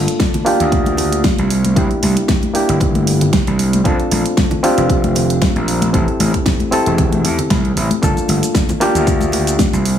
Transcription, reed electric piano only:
0, 0, Header, 1, 2, 480
1, 0, Start_track
1, 0, Tempo, 521739
1, 1624, Time_signature, 4, 2, 24, 8
1, 9187, End_track
2, 0, Start_track
2, 0, Title_t, "Reed electric piano"
2, 0, Program_c, 0, 4
2, 0, Note_on_c, 0, 58, 76
2, 0, Note_on_c, 0, 62, 66
2, 0, Note_on_c, 0, 65, 72
2, 0, Note_on_c, 0, 69, 82
2, 392, Note_off_c, 0, 58, 0
2, 395, Note_off_c, 0, 62, 0
2, 398, Note_off_c, 0, 65, 0
2, 401, Note_off_c, 0, 69, 0
2, 413, Note_on_c, 0, 58, 93
2, 419, Note_on_c, 0, 62, 85
2, 425, Note_on_c, 0, 65, 89
2, 431, Note_on_c, 0, 67, 104
2, 1365, Note_off_c, 0, 58, 0
2, 1368, Note_off_c, 0, 62, 0
2, 1371, Note_off_c, 0, 65, 0
2, 1374, Note_off_c, 0, 67, 0
2, 1617, Note_on_c, 0, 58, 69
2, 1621, Note_on_c, 0, 62, 64
2, 1627, Note_on_c, 0, 64, 63
2, 1634, Note_on_c, 0, 67, 79
2, 2314, Note_off_c, 0, 58, 0
2, 2316, Note_off_c, 0, 62, 0
2, 2319, Note_off_c, 0, 64, 0
2, 2322, Note_off_c, 0, 67, 0
2, 2332, Note_on_c, 0, 58, 79
2, 2338, Note_on_c, 0, 62, 69
2, 2344, Note_on_c, 0, 64, 68
2, 2351, Note_on_c, 0, 67, 85
2, 3511, Note_off_c, 0, 58, 0
2, 3514, Note_off_c, 0, 62, 0
2, 3518, Note_off_c, 0, 64, 0
2, 3521, Note_off_c, 0, 67, 0
2, 3535, Note_on_c, 0, 60, 75
2, 3540, Note_on_c, 0, 62, 70
2, 3547, Note_on_c, 0, 65, 71
2, 3553, Note_on_c, 0, 69, 82
2, 4233, Note_off_c, 0, 60, 0
2, 4236, Note_off_c, 0, 62, 0
2, 4239, Note_off_c, 0, 65, 0
2, 4242, Note_off_c, 0, 69, 0
2, 4257, Note_on_c, 0, 60, 98
2, 4263, Note_on_c, 0, 62, 89
2, 4269, Note_on_c, 0, 65, 90
2, 4275, Note_on_c, 0, 67, 102
2, 5434, Note_off_c, 0, 60, 0
2, 5437, Note_off_c, 0, 62, 0
2, 5440, Note_off_c, 0, 65, 0
2, 5443, Note_off_c, 0, 67, 0
2, 5456, Note_on_c, 0, 60, 69
2, 5463, Note_on_c, 0, 64, 65
2, 5469, Note_on_c, 0, 67, 64
2, 5475, Note_on_c, 0, 69, 75
2, 6153, Note_off_c, 0, 60, 0
2, 6157, Note_off_c, 0, 64, 0
2, 6160, Note_off_c, 0, 67, 0
2, 6163, Note_off_c, 0, 69, 0
2, 6176, Note_on_c, 0, 60, 78
2, 6181, Note_on_c, 0, 64, 71
2, 6187, Note_on_c, 0, 67, 71
2, 6194, Note_on_c, 0, 69, 86
2, 7353, Note_off_c, 0, 60, 0
2, 7356, Note_off_c, 0, 64, 0
2, 7359, Note_off_c, 0, 67, 0
2, 7362, Note_off_c, 0, 69, 0
2, 7377, Note_on_c, 0, 58, 77
2, 7383, Note_on_c, 0, 62, 67
2, 7390, Note_on_c, 0, 65, 66
2, 7396, Note_on_c, 0, 69, 85
2, 8074, Note_off_c, 0, 58, 0
2, 8077, Note_off_c, 0, 62, 0
2, 8081, Note_off_c, 0, 65, 0
2, 8084, Note_off_c, 0, 69, 0
2, 8098, Note_on_c, 0, 58, 94
2, 8104, Note_on_c, 0, 62, 85
2, 8109, Note_on_c, 0, 65, 91
2, 8116, Note_on_c, 0, 67, 105
2, 9048, Note_off_c, 0, 58, 0
2, 9051, Note_off_c, 0, 62, 0
2, 9053, Note_off_c, 0, 65, 0
2, 9057, Note_off_c, 0, 67, 0
2, 9187, End_track
0, 0, End_of_file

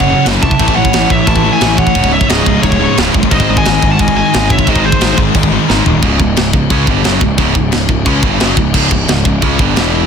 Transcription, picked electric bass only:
0, 0, Header, 1, 2, 480
1, 0, Start_track
1, 0, Key_signature, 4, "minor"
1, 0, Tempo, 339559
1, 844, Time_signature, 4, 2, 24, 8
1, 14228, End_track
2, 0, Start_track
2, 0, Title_t, "Picked electric bass"
2, 0, Program_c, 0, 34
2, 0, Note_on_c, 0, 30, 98
2, 182, Note_off_c, 0, 30, 0
2, 368, Note_on_c, 0, 30, 91
2, 516, Note_off_c, 0, 30, 0
2, 607, Note_on_c, 0, 36, 89
2, 756, Note_off_c, 0, 36, 0
2, 841, Note_on_c, 0, 33, 90
2, 992, Note_off_c, 0, 33, 0
2, 1085, Note_on_c, 0, 33, 92
2, 1235, Note_off_c, 0, 33, 0
2, 1325, Note_on_c, 0, 33, 87
2, 1475, Note_off_c, 0, 33, 0
2, 1560, Note_on_c, 0, 33, 87
2, 1711, Note_off_c, 0, 33, 0
2, 1801, Note_on_c, 0, 33, 104
2, 2103, Note_off_c, 0, 33, 0
2, 2278, Note_on_c, 0, 33, 90
2, 2580, Note_off_c, 0, 33, 0
2, 2758, Note_on_c, 0, 25, 95
2, 3061, Note_off_c, 0, 25, 0
2, 3247, Note_on_c, 0, 25, 94
2, 3397, Note_off_c, 0, 25, 0
2, 3485, Note_on_c, 0, 25, 91
2, 3635, Note_off_c, 0, 25, 0
2, 3727, Note_on_c, 0, 25, 99
2, 4026, Note_off_c, 0, 25, 0
2, 4207, Note_on_c, 0, 25, 100
2, 4357, Note_off_c, 0, 25, 0
2, 4445, Note_on_c, 0, 30, 90
2, 4595, Note_off_c, 0, 30, 0
2, 4690, Note_on_c, 0, 32, 99
2, 4839, Note_off_c, 0, 32, 0
2, 4933, Note_on_c, 0, 32, 97
2, 5080, Note_off_c, 0, 32, 0
2, 5177, Note_on_c, 0, 32, 106
2, 5323, Note_off_c, 0, 32, 0
2, 5408, Note_on_c, 0, 32, 93
2, 5557, Note_off_c, 0, 32, 0
2, 5647, Note_on_c, 0, 32, 99
2, 5946, Note_off_c, 0, 32, 0
2, 6142, Note_on_c, 0, 32, 89
2, 6436, Note_off_c, 0, 32, 0
2, 6605, Note_on_c, 0, 32, 102
2, 6904, Note_off_c, 0, 32, 0
2, 7091, Note_on_c, 0, 32, 98
2, 7239, Note_off_c, 0, 32, 0
2, 7321, Note_on_c, 0, 32, 87
2, 7472, Note_off_c, 0, 32, 0
2, 7563, Note_on_c, 0, 32, 97
2, 7863, Note_off_c, 0, 32, 0
2, 8050, Note_on_c, 0, 32, 89
2, 8198, Note_off_c, 0, 32, 0
2, 8290, Note_on_c, 0, 27, 89
2, 8438, Note_off_c, 0, 27, 0
2, 8519, Note_on_c, 0, 25, 97
2, 8744, Note_off_c, 0, 25, 0
2, 8762, Note_on_c, 0, 25, 88
2, 8986, Note_off_c, 0, 25, 0
2, 9007, Note_on_c, 0, 25, 79
2, 9228, Note_off_c, 0, 25, 0
2, 9234, Note_on_c, 0, 25, 76
2, 9461, Note_off_c, 0, 25, 0
2, 9480, Note_on_c, 0, 37, 102
2, 9704, Note_off_c, 0, 37, 0
2, 9720, Note_on_c, 0, 31, 92
2, 9945, Note_off_c, 0, 31, 0
2, 9965, Note_on_c, 0, 30, 95
2, 10187, Note_off_c, 0, 30, 0
2, 10196, Note_on_c, 0, 25, 81
2, 10422, Note_off_c, 0, 25, 0
2, 10436, Note_on_c, 0, 25, 101
2, 10662, Note_off_c, 0, 25, 0
2, 10675, Note_on_c, 0, 25, 78
2, 10902, Note_off_c, 0, 25, 0
2, 10935, Note_on_c, 0, 25, 82
2, 11145, Note_off_c, 0, 25, 0
2, 11153, Note_on_c, 0, 25, 77
2, 11381, Note_off_c, 0, 25, 0
2, 11393, Note_on_c, 0, 37, 104
2, 11621, Note_off_c, 0, 37, 0
2, 11638, Note_on_c, 0, 31, 100
2, 11863, Note_off_c, 0, 31, 0
2, 11885, Note_on_c, 0, 30, 98
2, 12107, Note_off_c, 0, 30, 0
2, 12120, Note_on_c, 0, 25, 83
2, 12344, Note_off_c, 0, 25, 0
2, 12357, Note_on_c, 0, 25, 87
2, 12583, Note_off_c, 0, 25, 0
2, 12595, Note_on_c, 0, 25, 84
2, 12822, Note_off_c, 0, 25, 0
2, 12835, Note_on_c, 0, 25, 78
2, 13062, Note_off_c, 0, 25, 0
2, 13079, Note_on_c, 0, 25, 80
2, 13304, Note_off_c, 0, 25, 0
2, 13322, Note_on_c, 0, 37, 98
2, 13545, Note_off_c, 0, 37, 0
2, 13563, Note_on_c, 0, 31, 96
2, 13786, Note_off_c, 0, 31, 0
2, 13806, Note_on_c, 0, 28, 94
2, 14228, Note_off_c, 0, 28, 0
2, 14228, End_track
0, 0, End_of_file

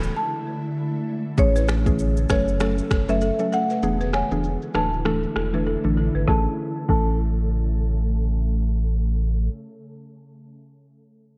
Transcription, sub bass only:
0, 0, Header, 1, 2, 480
1, 0, Start_track
1, 0, Key_signature, 3, "major"
1, 0, Tempo, 612245
1, 1080, Time_signature, 4, 2, 24, 8
1, 8920, End_track
2, 0, Start_track
2, 0, Title_t, "Sub bass"
2, 0, Program_c, 0, 38
2, 0, Note_on_c, 0, 26, 98
2, 81, Note_off_c, 0, 26, 0
2, 1080, Note_on_c, 0, 33, 106
2, 1769, Note_off_c, 0, 33, 0
2, 1802, Note_on_c, 0, 30, 105
2, 2200, Note_off_c, 0, 30, 0
2, 2280, Note_on_c, 0, 30, 99
2, 2596, Note_off_c, 0, 30, 0
2, 3000, Note_on_c, 0, 28, 105
2, 3316, Note_off_c, 0, 28, 0
2, 3380, Note_on_c, 0, 28, 91
2, 3580, Note_off_c, 0, 28, 0
2, 3721, Note_on_c, 0, 26, 96
2, 4120, Note_off_c, 0, 26, 0
2, 4200, Note_on_c, 0, 28, 92
2, 4516, Note_off_c, 0, 28, 0
2, 4581, Note_on_c, 0, 33, 88
2, 4780, Note_off_c, 0, 33, 0
2, 4820, Note_on_c, 0, 32, 86
2, 4904, Note_off_c, 0, 32, 0
2, 4921, Note_on_c, 0, 33, 96
2, 5069, Note_off_c, 0, 33, 0
2, 5401, Note_on_c, 0, 33, 95
2, 7437, Note_off_c, 0, 33, 0
2, 8920, End_track
0, 0, End_of_file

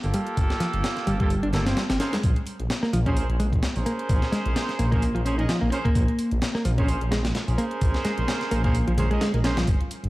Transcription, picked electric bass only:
0, 0, Header, 1, 2, 480
1, 0, Start_track
1, 0, Tempo, 465116
1, 388, Time_signature, 4, 2, 24, 8
1, 10414, End_track
2, 0, Start_track
2, 0, Title_t, "Picked electric bass"
2, 0, Program_c, 0, 34
2, 145, Note_on_c, 0, 55, 72
2, 202, Note_off_c, 0, 55, 0
2, 620, Note_on_c, 0, 53, 88
2, 679, Note_off_c, 0, 53, 0
2, 1102, Note_on_c, 0, 55, 74
2, 1160, Note_off_c, 0, 55, 0
2, 1234, Note_on_c, 0, 55, 71
2, 1464, Note_off_c, 0, 55, 0
2, 1475, Note_on_c, 0, 62, 96
2, 1522, Note_off_c, 0, 62, 0
2, 1585, Note_on_c, 0, 58, 69
2, 1710, Note_off_c, 0, 58, 0
2, 1716, Note_on_c, 0, 60, 95
2, 1816, Note_off_c, 0, 60, 0
2, 1822, Note_on_c, 0, 55, 74
2, 1880, Note_off_c, 0, 55, 0
2, 1955, Note_on_c, 0, 60, 77
2, 2054, Note_off_c, 0, 60, 0
2, 2061, Note_on_c, 0, 61, 68
2, 2156, Note_off_c, 0, 61, 0
2, 2193, Note_on_c, 0, 56, 71
2, 2271, Note_off_c, 0, 56, 0
2, 2917, Note_on_c, 0, 58, 75
2, 2993, Note_off_c, 0, 58, 0
2, 3025, Note_on_c, 0, 53, 97
2, 3081, Note_off_c, 0, 53, 0
2, 3160, Note_on_c, 0, 61, 74
2, 3262, Note_off_c, 0, 61, 0
2, 3505, Note_on_c, 0, 56, 93
2, 3561, Note_off_c, 0, 56, 0
2, 3984, Note_on_c, 0, 58, 72
2, 4041, Note_off_c, 0, 58, 0
2, 4460, Note_on_c, 0, 56, 96
2, 4519, Note_off_c, 0, 56, 0
2, 4943, Note_on_c, 0, 58, 70
2, 5001, Note_off_c, 0, 58, 0
2, 5074, Note_on_c, 0, 58, 78
2, 5304, Note_off_c, 0, 58, 0
2, 5311, Note_on_c, 0, 53, 97
2, 5360, Note_off_c, 0, 53, 0
2, 5421, Note_on_c, 0, 61, 68
2, 5544, Note_off_c, 0, 61, 0
2, 5552, Note_on_c, 0, 63, 68
2, 5601, Note_off_c, 0, 63, 0
2, 5662, Note_on_c, 0, 53, 79
2, 5757, Note_off_c, 0, 53, 0
2, 5792, Note_on_c, 0, 58, 98
2, 5870, Note_off_c, 0, 58, 0
2, 5901, Note_on_c, 0, 61, 71
2, 5959, Note_off_c, 0, 61, 0
2, 6036, Note_on_c, 0, 58, 71
2, 6505, Note_off_c, 0, 58, 0
2, 6756, Note_on_c, 0, 58, 74
2, 6832, Note_off_c, 0, 58, 0
2, 6862, Note_on_c, 0, 53, 93
2, 6920, Note_off_c, 0, 53, 0
2, 6996, Note_on_c, 0, 61, 72
2, 7100, Note_off_c, 0, 61, 0
2, 7342, Note_on_c, 0, 56, 93
2, 7400, Note_off_c, 0, 56, 0
2, 7823, Note_on_c, 0, 58, 78
2, 7881, Note_off_c, 0, 58, 0
2, 8305, Note_on_c, 0, 56, 95
2, 8361, Note_off_c, 0, 56, 0
2, 8786, Note_on_c, 0, 58, 74
2, 8842, Note_off_c, 0, 58, 0
2, 8916, Note_on_c, 0, 58, 72
2, 9145, Note_off_c, 0, 58, 0
2, 9158, Note_on_c, 0, 53, 94
2, 9204, Note_off_c, 0, 53, 0
2, 9264, Note_on_c, 0, 56, 73
2, 9321, Note_off_c, 0, 56, 0
2, 9398, Note_on_c, 0, 56, 94
2, 9473, Note_off_c, 0, 56, 0
2, 9508, Note_on_c, 0, 56, 81
2, 9634, Note_off_c, 0, 56, 0
2, 9641, Note_on_c, 0, 58, 72
2, 9685, Note_off_c, 0, 58, 0
2, 9750, Note_on_c, 0, 61, 98
2, 9804, Note_off_c, 0, 61, 0
2, 9880, Note_on_c, 0, 53, 94
2, 9977, Note_off_c, 0, 53, 0
2, 10414, End_track
0, 0, End_of_file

